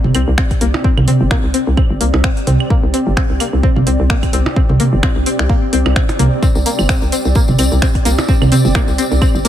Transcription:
Already playing: ambient pad C4 G4 D5
0.04 fm bass G1, mid tom
0.15 fm bass C2, synth pluck C4, open hi-hat, claves
0.28 fm bass C2
0.38 synth pluck C4, finger snap, kick
0.51 kick, open hi-hat
0.61 fm bass C2, synth pluck A#3, open hi-hat
0.74 percussion blips
0.84 synth pluck C4, kick
0.97 fm bass C2, mid tom, claves
1.08 synth pluck C4, open hi-hat, mid tom
1.21 fm bass G1
1.31 synth pluck A#3, finger snap, kick, percussion blips
1.44 fm bass C2
1.54 synth pluck C4, open hi-hat
1.67 fm bass C2
1.77 synth pluck C4, kick, claves
1.90 fm bass G1
2.01 fm bass C2, synth pluck A#3, open hi-hat
2.14 fm bass C2, percussion blips
2.24 synth pluck C4, finger snap, kick
2.37 open hi-hat
2.47 fm bass C2, synth pluck C4, open hi-hat, mid tom
2.60 claves
2.70 synth pluck A#3, kick
2.83 fm bass C2
2.94 synth pluck C4, open hi-hat
3.07 fm bass G1
3.17 synth pluck C4, finger snap, kick
3.30 fm bass C2
3.40 synth pluck A#3, open hi-hat, claves
3.53 fm bass C2
3.63 synth pluck C4, kick
3.76 fm bass G1, mid tom
3.87 fm bass C2, synth pluck C4, open hi-hat
4.00 fm bass C2
4.10 synth pluck A#3, finger snap, kick
4.23 kick, open hi-hat, claves
4.33 fm bass C2, synth pluck C4, open hi-hat
4.46 percussion blips
4.56 synth pluck C4, kick
4.69 fm bass C2, mid tom
4.80 synth pluck A#3, open hi-hat, mid tom
4.93 fm bass G1
5.03 synth pluck C4, finger snap, kick, percussion blips, claves
5.16 fm bass C2
5.26 synth pluck C4, open hi-hat
5.39 fm bass C2, finger snap
5.49 synth pluck A#3, kick
5.73 fm bass C2, synth pluck C4, open hi-hat
5.86 fm bass C2, percussion blips, claves
5.96 synth pluck C4, finger snap, kick
6.09 open hi-hat, percussion blips
6.19 fm bass C2, synth pluck A#3, open hi-hat, mid tom
6.43 synth pluck C4, kick, tambourine
6.55 fm bass C2, tambourine
6.66 synth pluck A#3, open hi-hat, tambourine
6.79 fm bass G1, tambourine, claves
6.89 synth pluck C4, finger snap, kick, tambourine
7.02 fm bass C2, tambourine
7.12 synth pluck C4, open hi-hat, tambourine
7.25 fm bass C2, tambourine
7.35 synth pluck A#3, kick, tambourine
7.48 fm bass G1, mid tom, tambourine
7.58 fm bass C2, synth pluck C4, open hi-hat, tambourine, claves
7.72 fm bass C2, tambourine
7.82 synth pluck C4, finger snap, kick, tambourine
7.95 kick, open hi-hat
8.05 fm bass C2, synth pluck A#3, open hi-hat, tambourine
8.19 tambourine, percussion blips
8.28 synth pluck C4, kick, tambourine
8.42 fm bass C2, mid tom, tambourine, claves
8.52 synth pluck C4, open hi-hat, mid tom, tambourine
8.65 fm bass G1, tambourine
8.75 synth pluck A#3, finger snap, kick, tambourine, percussion blips
8.88 fm bass C2, tambourine
8.98 synth pluck C4, open hi-hat, tambourine
9.11 fm bass C2, tambourine
9.22 synth pluck C4, kick, tambourine, claves
9.35 fm bass G1, tambourine
9.45 fm bass C2, synth pluck A#3, open hi-hat, tambourine

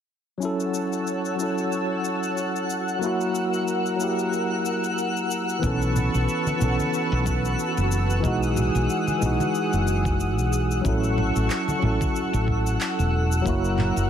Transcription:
0.38 tine electric piano F#3 C#4, synth texture F#4, analog synth pad C#5 F#5 A5 E6
0.42 tine electric piano E4 A4, synth texture F#5, cabasa
0.60 cabasa
0.74 cabasa
0.93 cabasa
1.07 cabasa
1.25 cabasa
1.36 tine electric piano F#3 C#4
1.40 tine electric piano E4 A4, cabasa
1.58 cabasa
1.72 cabasa
2.05 cabasa
2.23 cabasa
2.37 cabasa
2.56 cabasa
2.70 cabasa
2.88 cabasa
2.99 tine electric piano F#3 A#3, analog synth pad A#4 E6, cabasa
3.04 tine electric piano E4 F#4
3.21 cabasa
3.35 cabasa
3.54 cabasa
3.68 cabasa
3.86 cabasa
3.96 tine electric piano F#3 A#3, cabasa
4.01 tine electric piano E4 G4
4.19 cabasa
4.33 cabasa
4.66 cabasa
4.84 cabasa
4.98 cabasa
5.17 cabasa
5.31 cabasa
5.49 cabasa
5.59 fretless electric bass B1, tine electric piano E3 B3, analog synth pad B4 A5 C#6, kick
5.64 tine electric piano C#4 A4, cabasa
5.82 cabasa
5.96 low conga, cabasa
6.14 fretless electric bass B1, cabasa
6.29 cabasa
6.47 high conga, cabasa
6.57 fretless electric bass B1, tine electric piano E3 B3, low conga
6.61 tine electric piano C#4 A4, cabasa
6.80 high conga, cabasa
6.94 cabasa
7.12 fretless electric bass B1
7.26 kick, cabasa
7.45 cabasa
7.59 cabasa
7.77 fretless electric bass F#1, cabasa
7.92 cabasa
8.10 cabasa
8.20 fretless electric bass B1, tine electric piano E3 G#3, analog synth pad G#4 F#5, kick
8.24 tine electric piano D#4 F#4, analog synth pad D#6, cabasa
8.43 cabasa
8.56 low conga, cabasa
8.75 fretless electric bass B1, cabasa
8.90 cabasa
9.08 high conga, cabasa
9.18 fretless electric bass B1, tine electric piano E3 G#3, low conga, cabasa
9.23 tine electric piano D#4 F#4
9.40 high conga, cabasa
9.55 cabasa
9.73 fretless electric bass F#1, cabasa
9.88 cabasa
10.05 kick, cabasa
10.20 cabasa
10.38 fretless electric bass B1, cabasa
10.53 cabasa
10.71 cabasa
10.81 fretless electric bass A1, tine electric piano F#3 C#4, synth texture F#4 F#5, analog synth pad A4 F#5 C#6 E6, kick
10.85 tine electric piano E4 A4, cabasa
11.04 cabasa
11.18 low conga
11.36 fretless electric bass A1, cabasa
11.50 clap, cabasa
11.68 high conga, cabasa
11.79 fretless electric bass A1, tine electric piano F#3 C#4, low conga
11.84 tine electric piano E4 A4
12.01 kick, high conga, cabasa
12.16 cabasa
12.33 fretless electric bass A1, cabasa
12.48 kick
12.67 cabasa
12.81 clap, cabasa
12.99 fretless electric bass E1, cabasa
13.32 cabasa
13.42 fretless electric bass F#1, tine electric piano F#3 A#3, analog synth pad A#4, kick
13.46 tine electric piano E4 F#4, cabasa
13.65 cabasa
13.78 clap, low conga
13.96 fretless electric bass F#1, cabasa

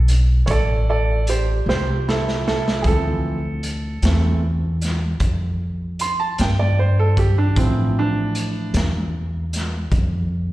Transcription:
Already playing: upright bass B1
0.08 closed hi-hat
0.46 upright bass A1, upright piano A4 C#5, kick, closed hi-hat
0.51 upright piano D5
0.89 upright piano A4 D5
1.27 upright piano G4 C5, closed hi-hat
1.66 upright bass C2, upright piano G4 C5, snare
2.08 upright piano E4 A4, snare
2.28 snare
2.47 upright piano E4 A4, snare
2.68 snare
2.82 upright bass D2, upright piano E3 F3 C4 G#4, kick, closed hi-hat
2.87 upright piano A4
3.63 closed hi-hat
4.02 upright bass E2, upright piano E3 A3 C4, snare, closed hi-hat
4.81 snare, closed hi-hat
5.20 upright bass F2, kick, closed hi-hat
5.99 upright piano C6, closed hi-hat
6.20 upright piano A5
6.38 upright bass G2, upright piano G5, snare, closed hi-hat
6.59 upright piano D5
6.79 upright piano C5
6.99 upright piano A4
7.17 upright piano G4, kick, closed hi-hat
7.38 upright piano D4
7.56 upright bass A2, upright piano E3 F3 C4, kick, closed hi-hat
7.99 upright piano D4
8.35 closed hi-hat
8.74 upright bass E2, snare, closed hi-hat
9.53 snare, closed hi-hat
9.91 upright bass F2, kick, closed hi-hat

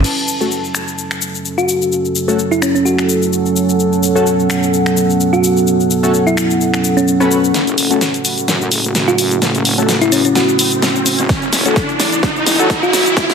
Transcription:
Already playing: ambient pad E4 B4 A5
0.04 analog synth pad F#3 C#4 A4, ambient pad C#4, crash, shaker
0.18 shaker
0.28 ambient pad A4, shaker
0.41 synth stab A3 C#4 F#4 A4, shaker
0.52 shaker
0.64 shaker
0.75 finger snap, shaker
0.83 ambient pad F#5
0.88 shaker
0.98 shaker
1.11 finger snap, shaker
1.22 shaker
1.35 shaker
1.45 shaker
1.58 synth pluck F#4, shaker
1.69 shaker
1.82 shaker
1.92 shaker
2.05 shaker
2.16 shaker
2.28 synth stab A3 C#4 F#4 A4, shaker
2.39 shaker
2.51 synth pluck E4, shaker
2.62 synth pluck C#4, finger snap, shaker
2.75 synth pluck C#4, shaker
2.85 synth pluck F#4, shaker
2.99 finger snap, shaker
3.09 shaker
3.22 shaker
3.33 shaker
3.46 shaker
3.56 shaker
3.69 shaker
3.79 analog synth pad B3, shaker
3.93 shaker
4.03 shaker
4.16 synth stab A3 C#4 F#4 A4, shaker
4.27 shaker
4.40 shaker
4.50 finger snap, shaker
4.63 shaker
4.74 shaker
4.86 finger snap, shaker
4.97 shaker
5.10 shaker
5.21 shaker
5.33 synth pluck F#4, shaker
5.44 shaker
5.57 shaker
5.67 shaker
5.80 shaker
5.91 shaker
6.03 synth stab A3 C#4 F#4 A4, shaker
6.14 shaker
6.27 synth pluck E4, shaker
6.37 finger snap, shaker
6.50 shaker
6.61 shaker
6.74 finger snap, shaker
6.84 shaker
6.97 synth pluck C#4, shaker
7.08 shaker
7.20 synth stab A3 C#4 F#4 B4, synth pluck C#4, shaker
7.31 shaker
7.44 shaker
7.54 wobble bass F#1, analog synth pad A3 C#4 F#4, snare, closed hi-hat, riser, shaker
7.67 closed hi-hat, shaker
7.78 open hi-hat, shaker
7.91 synth stab A3 C#4 F#4 A4, closed hi-hat, shaker
8.01 snare, closed hi-hat, shaker
8.14 closed hi-hat, shaker
8.25 open hi-hat, shaker
8.38 closed hi-hat, shaker
8.48 wobble bass F#2, snare, closed hi-hat, shaker
8.61 shaker
8.71 wobble bass F#1, open hi-hat, shaker
8.84 closed hi-hat, shaker
8.95 wobble bass F#1, snare, closed hi-hat, shaker
9.08 synth pluck F#4, shaker
9.18 open hi-hat, shaker
9.31 closed hi-hat, shaker
9.42 wobble bass F#1, snare, closed hi-hat, shaker
9.55 closed hi-hat, shaker
9.65 open hi-hat, shaker
9.78 synth stab A3 C#4 F#4 A4, closed hi-hat, shaker
9.89 wobble bass F#1, snare, closed hi-hat, shaker
10.01 synth pluck E4, closed hi-hat, shaker
10.12 wobble bass F#1, synth pluck C#4, open hi-hat, shaker
10.25 synth pluck C#4, closed hi-hat, shaker
10.35 synth pluck F#4, snare, closed hi-hat, shaker
10.49 shaker
10.59 open hi-hat, shaker
10.72 closed hi-hat, shaker
10.82 snare, closed hi-hat, shaker
10.96 shaker
11.06 open hi-hat, shaker
11.19 wobble bass F#1, closed hi-hat, shaker
11.29 wobble bass F#1, analog synth pad E4, kick, snare, closed hi-hat, shaker
11.42 closed hi-hat, shaker
11.53 snare, open hi-hat, shaker
11.66 synth stab A3 C#4 F#4 A4, closed hi-hat, shaker
11.76 kick, snare, closed hi-hat, shaker
11.89 closed hi-hat, shaker
12.00 snare, open hi-hat, shaker
12.12 closed hi-hat, shaker
12.23 wobble bass F#2, kick, snare, closed hi-hat, shaker
12.36 shaker
12.46 wobble bass F#1, snare, open hi-hat, shaker
12.59 synth stab A3 C#4 F#4 A4, closed hi-hat, shaker
12.70 wobble bass F#1, kick, snare, closed hi-hat, shaker
12.83 synth pluck F#4, shaker
12.93 snare, open hi-hat, shaker
13.06 closed hi-hat, shaker
13.17 wobble bass F#1, kick, snare, closed hi-hat, shaker
13.30 snare, closed hi-hat, shaker

